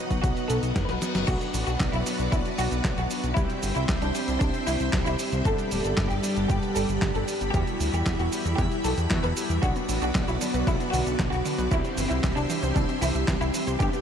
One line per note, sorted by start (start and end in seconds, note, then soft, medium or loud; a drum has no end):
0.00 0.73 F#3 medium
0.00 0.73 B3 medium
0.00 1.24 B3 medium
0.00 0.13 D#4 medium
0.00 0.73 D#4 medium
0.00 0.73 F#4 medium
0.00 1.24 B4 medium
0.00 1.24 D#5 medium
0.00 1.24 F#5 medium
0.11 0.20 B1 medium
0.11 kick medium
0.11 closed hi-hat soft
0.11 cabasa soft
0.24 0.34 B1 loud
0.24 0.42 F#4 medium
0.24 kick loud
0.24 closed hi-hat medium
0.24 reverse cymbal medium
0.24 cabasa soft
0.37 closed hi-hat soft
0.37 cabasa soft
0.50 0.60 B1 loud
0.50 0.78 A4 medium
0.50 closed hi-hat medium
0.50 cabasa medium
0.63 0.73 B1 medium
0.63 closed hi-hat soft
0.63 cabasa soft
0.76 0.86 F#1 loud
0.76 0.99 F#3 medium
0.76 0.99 B3 medium
0.76 0.99 D#4 medium
0.76 0.99 F#4 medium
0.76 kick loud
0.76 snare loud
0.76 closed hi-hat medium
0.76 cabasa soft
0.89 0.99 B1 medium
0.89 1.17 B4 medium
0.89 snare soft
0.89 closed hi-hat soft
0.89 cabasa soft
1.02 1.25 F#3 medium
1.02 1.25 B3 medium
1.02 1.25 D#4 medium
1.02 1.25 F#4 loud
1.02 snare medium
1.02 closed hi-hat loud
1.02 cabasa medium
1.15 1.25 F#1 medium
1.15 snare medium
1.15 closed hi-hat soft
1.15 cabasa soft
1.28 1.38 B1 loud
1.28 2.03 F#3 medium
1.28 3.35 B3 medium
1.28 2.03 B3 medium
1.28 2.03 D4 medium
1.28 1.56 F#4 loud
1.28 2.03 F#4 medium
1.28 3.35 B4 medium
1.28 3.35 D5 medium
1.28 3.35 F#5 medium
1.28 kick loud
1.28 closed hi-hat medium
1.28 crash loud
1.28 cabasa soft
1.41 closed hi-hat soft
1.41 cabasa soft
1.54 1.64 A1 medium
1.54 open hi-hat loud
1.54 cabasa medium
1.67 1.77 B1 medium
1.67 1.86 F#4 medium
1.67 closed hi-hat soft
1.67 cabasa soft
1.80 1.90 B1 loud
1.80 kick loud
1.80 snare loud
1.80 clap loud
1.80 closed hi-hat medium
1.80 cabasa soft
1.93 2.03 B1 medium
1.93 2.21 E4 medium
1.93 closed hi-hat soft
1.93 cabasa soft
2.06 3.34 F#3 medium
2.06 3.34 B3 medium
2.06 3.34 D4 medium
2.06 3.34 F#4 loud
2.06 open hi-hat loud
2.06 cabasa medium
2.19 2.29 B1 medium
2.19 closed hi-hat soft
2.19 cabasa soft
2.32 2.42 B1 loud
2.32 2.51 E4 medium
2.32 kick loud
2.32 closed hi-hat medium
2.32 cabasa soft
2.45 closed hi-hat soft
2.45 cabasa soft
2.58 2.68 B1 loud
2.58 2.86 F#4 loud
2.58 open hi-hat loud
2.58 cabasa medium
2.72 2.81 B1 medium
2.72 closed hi-hat soft
2.72 cabasa soft
2.84 2.94 B1 loud
2.84 kick loud
2.84 snare loud
2.84 clap loud
2.84 closed hi-hat medium
2.84 cabasa soft
2.97 3.07 B1 medium
2.97 3.25 F#4 medium
2.97 closed hi-hat soft
2.97 cabasa soft
3.11 open hi-hat loud
3.11 cabasa medium
3.24 3.34 B1 medium
3.24 closed hi-hat soft
3.24 cabasa soft
3.37 3.47 C2 loud
3.37 4.12 G3 medium
3.37 4.12 C4 medium
3.37 5.43 C4 medium
3.37 3.65 E4 loud
3.37 4.12 E4 medium
3.37 4.12 G4 loud
3.37 5.43 C5 medium
3.37 5.43 E5 medium
3.37 5.43 G5 medium
3.37 kick loud
3.37 closed hi-hat medium
3.37 cabasa soft
3.50 closed hi-hat soft
3.50 cabasa soft
3.63 3.73 G1 medium
3.63 open hi-hat loud
3.63 cabasa medium
3.76 3.86 C2 medium
3.76 3.94 E4 medium
3.76 closed hi-hat soft
3.76 cabasa soft
3.89 3.99 C2 loud
3.89 kick loud
3.89 snare loud
3.89 clap loud
3.89 closed hi-hat medium
3.89 cabasa soft
4.02 4.12 C2 medium
4.02 4.30 D4 medium
4.02 closed hi-hat soft
4.02 cabasa soft
4.15 5.42 G3 medium
4.15 5.42 C4 medium
4.15 5.42 E4 medium
4.15 5.42 G4 medium
4.15 open hi-hat loud
4.15 cabasa medium
4.28 4.38 C2 medium
4.28 closed hi-hat soft
4.28 cabasa soft
4.41 4.51 C2 loud
4.41 4.60 D4 medium
4.41 kick loud
4.41 closed hi-hat medium
4.41 cabasa soft
4.54 closed hi-hat soft
4.54 cabasa soft
4.67 4.77 C2 loud
4.67 4.95 E4 loud
4.67 open hi-hat loud
4.67 cabasa medium
4.80 4.90 C2 medium
4.80 closed hi-hat soft
4.80 cabasa soft
4.93 5.03 C2 loud
4.93 kick loud
4.93 snare loud
4.93 clap loud
4.93 closed hi-hat medium
4.93 cabasa soft
5.06 5.16 C2 medium
5.06 5.34 E4 loud
5.06 closed hi-hat soft
5.06 cabasa soft
5.19 open hi-hat loud
5.19 cabasa medium
5.32 5.42 C2 medium
5.32 closed hi-hat soft
5.32 cabasa soft
5.45 5.55 G1 loud
5.45 6.20 G3 medium
5.45 7.52 G3 medium
5.45 6.20 B3 medium
5.45 6.20 D4 medium
5.45 6.20 G4 medium
5.45 7.52 G4 medium
5.45 5.73 A4 loud
5.45 7.52 D5 medium
5.45 11.67 B5 medium
5.45 kick loud
5.45 closed hi-hat medium
5.45 cabasa soft
5.58 closed hi-hat soft
5.58 cabasa soft
5.71 5.81 D1 medium
5.71 open hi-hat loud
5.71 cabasa medium
5.84 5.94 G1 medium
5.84 6.03 A4 medium
5.84 closed hi-hat soft
5.84 cabasa soft
5.97 6.07 G1 loud
5.97 kick loud
5.97 snare loud
5.97 clap loud
5.97 closed hi-hat medium
5.97 cabasa soft
6.11 6.20 G1 medium
6.11 6.39 G4 medium
6.11 closed hi-hat soft
6.11 cabasa soft
6.23 7.51 G3 medium
6.23 7.51 B3 medium
6.23 7.51 D4 medium
6.23 7.51 G4 loud
6.23 open hi-hat loud
6.23 cabasa medium
6.37 6.47 G1 medium
6.37 closed hi-hat soft
6.37 cabasa soft
6.50 6.60 G1 loud
6.50 6.68 G4 medium
6.50 kick loud
6.50 closed hi-hat medium
6.50 cabasa soft
6.63 closed hi-hat soft
6.63 cabasa soft
6.76 6.86 G1 loud
6.76 7.04 A4 loud
6.76 open hi-hat loud
6.76 cabasa medium
6.89 6.99 G1 medium
6.89 closed hi-hat soft
6.89 cabasa soft
7.02 7.12 G1 loud
7.02 kick loud
7.02 snare loud
7.02 clap loud
7.02 closed hi-hat medium
7.02 cabasa soft
7.15 7.25 G1 medium
7.15 7.43 A4 loud
7.15 closed hi-hat soft
7.15 cabasa soft
7.28 open hi-hat loud
7.28 cabasa medium
7.41 7.51 G1 medium
7.41 closed hi-hat soft
7.41 cabasa soft
7.54 7.64 E2 loud
7.54 8.29 G3 medium
7.54 8.29 B3 medium
7.54 8.29 E4 medium
7.54 9.61 E4 medium
7.54 8.29 F#4 loud
7.54 7.82 G4 loud
7.54 9.61 E5 medium
7.54 kick loud
7.54 closed hi-hat medium
7.54 cabasa soft
7.67 closed hi-hat soft
7.67 cabasa soft
7.80 7.90 D2 medium
7.80 open hi-hat loud
7.80 cabasa medium
7.93 8.03 E2 medium
7.93 8.12 G4 medium
7.93 closed hi-hat soft
7.93 cabasa soft
8.06 8.16 E2 loud
8.06 kick loud
8.06 snare loud
8.06 clap loud
8.06 closed hi-hat medium
8.06 cabasa soft
8.19 8.29 E2 medium
8.19 8.47 F#4 medium
8.19 closed hi-hat soft
8.19 cabasa soft
8.32 9.08 G3 medium
8.32 9.08 B3 medium
8.32 9.08 E4 medium
8.32 9.08 G4 medium
8.32 open hi-hat loud
8.32 cabasa medium
8.45 8.55 E2 medium
8.45 closed hi-hat soft
8.45 cabasa soft
8.58 8.68 E2 loud
8.58 8.77 G4 medium
8.58 kick loud
8.58 closed hi-hat medium
8.58 cabasa soft
8.71 closed hi-hat soft
8.71 cabasa soft
8.84 8.94 B1 loud
8.84 9.12 A4 medium
8.84 open hi-hat loud
8.84 cabasa medium
8.98 9.07 E2 medium
8.98 closed hi-hat soft
8.98 cabasa soft
9.10 9.20 E2 loud
9.10 9.34 G3 medium
9.10 9.34 B3 medium
9.10 9.34 E4 medium
9.10 9.34 F#4 loud
9.10 kick loud
9.10 snare loud
9.10 clap loud
9.10 closed hi-hat medium
9.10 cabasa soft
9.24 9.33 E2 medium
9.24 9.52 B4 medium
9.24 closed hi-hat soft
9.24 cabasa soft
9.37 9.60 G3 loud
9.37 9.60 B3 medium
9.37 9.60 E4 medium
9.37 9.60 G4 loud
9.37 open hi-hat loud
9.37 cabasa medium
9.50 9.60 E2 medium
9.50 closed hi-hat soft
9.50 cabasa soft
9.63 9.73 B1 loud
9.63 9.71 D3 medium
9.63 10.38 F#3 medium
9.63 11.69 B3 medium
9.63 10.38 B3 medium
9.63 10.38 D4 medium
9.63 9.91 F#4 loud
9.63 11.69 F#4 medium
9.63 10.38 F#4 medium
9.63 11.69 D5 medium
9.63 kick loud
9.63 closed hi-hat medium
9.63 cabasa soft
9.76 9.84 B3 medium
9.76 closed hi-hat soft
9.76 cabasa soft
9.89 9.99 A1 loud
9.89 9.97 D3 medium
9.89 open hi-hat loud
9.89 cabasa medium
10.02 10.12 B1 medium
10.02 10.07 D4 medium
10.02 10.21 F#4 medium
10.02 closed hi-hat soft
10.02 cabasa soft
10.15 10.25 B1 loud
10.15 10.23 D3 medium
10.15 kick loud
10.15 snare loud
10.15 clap loud
10.15 closed hi-hat medium
10.15 cabasa soft
10.28 10.38 B1 medium
10.28 10.56 E4 medium
10.28 10.36 F#4 medium
10.28 closed hi-hat soft
10.28 cabasa soft
10.41 10.49 D3 loud
10.41 11.68 F#3 medium
10.41 11.68 B3 medium
10.41 11.68 D4 medium
10.41 11.68 F#4 loud
10.41 open hi-hat loud
10.41 cabasa medium
10.54 10.64 B1 medium
10.54 10.59 B4 loud
10.54 closed hi-hat soft
10.54 cabasa soft
10.67 10.77 B1 loud
10.67 10.75 D3 medium
10.67 10.86 E4 medium
10.67 kick loud
10.67 closed hi-hat medium
10.67 cabasa soft
10.80 10.88 B3 medium
10.80 closed hi-hat soft
10.80 cabasa soft
10.93 11.03 B1 loud
10.93 11.01 D3 medium
10.93 11.21 F#4 medium
10.93 open hi-hat loud
10.93 cabasa medium
11.06 11.16 B1 medium
11.06 11.11 D4 medium
11.06 closed hi-hat soft
11.06 cabasa soft
11.19 11.29 B1 loud
11.19 11.27 D3 medium
11.19 kick loud
11.19 snare loud
11.19 clap loud
11.19 closed hi-hat medium
11.19 cabasa soft
11.32 11.42 B1 medium
11.32 11.40 F#4 medium
11.32 11.60 F#4 medium
11.32 closed hi-hat soft
11.32 cabasa soft
11.45 11.53 D3 loud
11.45 open hi-hat loud
11.45 cabasa medium
11.58 11.68 B1 medium
11.58 11.63 B4 loud
11.58 closed hi-hat soft
11.58 cabasa soft
11.71 11.81 C2 loud
11.71 11.79 E3 medium
11.71 12.47 G3 medium
11.71 12.47 C4 medium
11.71 13.78 C4 medium
11.71 12.47 E4 medium
11.71 12.00 E4 loud
11.71 12.47 G4 medium
11.71 13.78 G4 medium
11.71 13.78 E5 medium
11.71 13.78 C6 medium
11.71 kick loud
11.71 closed hi-hat medium
11.71 cabasa soft
11.84 11.92 C4 medium
11.84 closed hi-hat soft
11.84 cabasa soft
11.97 12.07 G1 medium
11.97 12.06 E3 medium
11.97 open hi-hat loud
11.97 cabasa medium
12.11 12.20 C2 medium
12.11 12.29 E4 medium
12.11 12.15 E4 medium
12.11 closed hi-hat soft
12.11 cabasa soft
12.24 12.33 C2 loud
12.24 12.32 E3 medium
12.24 kick loud
12.24 snare loud
12.24 clap medium
12.24 closed hi-hat medium
12.24 cabasa soft
12.37 12.47 C2 medium
12.37 12.65 D4 loud
12.37 12.45 G4 medium
12.37 closed hi-hat soft
12.37 cabasa soft
12.50 12.58 E3 loud
12.50 13.77 G3 medium
12.50 13.77 C4 medium
12.50 13.77 E4 medium
12.50 13.77 G4 medium
12.50 open hi-hat loud
12.50 cabasa medium
12.63 12.73 C2 medium
12.63 12.68 C5 loud
12.63 closed hi-hat soft
12.63 cabasa soft
12.76 12.86 C2 loud
12.76 12.84 E3 medium
12.76 12.95 D4 medium
12.76 kick loud
12.76 closed hi-hat medium
12.76 cabasa soft
12.89 12.97 C4 medium
12.89 closed hi-hat soft
12.89 cabasa soft
13.02 13.12 C2 loud
13.02 13.10 E3 medium
13.02 13.30 E4 loud
13.02 open hi-hat loud
13.02 cabasa medium
13.15 13.25 C2 medium
13.15 13.20 E4 medium
13.15 closed hi-hat soft
13.15 cabasa soft
13.28 13.38 C2 loud
13.28 13.36 E3 medium
13.28 kick loud
13.28 snare loud
13.28 clap loud
13.28 closed hi-hat medium
13.28 cabasa soft
13.41 13.51 C2 medium
13.41 13.69 E4 medium
13.41 13.49 G4 medium
13.41 closed hi-hat soft
13.41 cabasa soft
13.54 13.62 E3 loud
13.54 open hi-hat loud
13.54 cabasa medium
13.67 13.77 C2 medium
13.67 13.72 C5 loud
13.67 closed hi-hat soft
13.67 cabasa soft
13.80 13.90 G1 loud
13.80 13.88 D3 medium
13.80 14.01 G3 medium
13.80 14.01 B3 medium
13.80 14.01 D4 medium
13.80 14.01 G4 medium
13.80 14.01 G4 loud
13.80 14.01 D5 medium
13.80 14.01 B5 medium
13.80 kick loud
13.80 closed hi-hat medium
13.80 cabasa soft
13.93 14.01 B3 medium
13.93 closed hi-hat soft
13.93 cabasa soft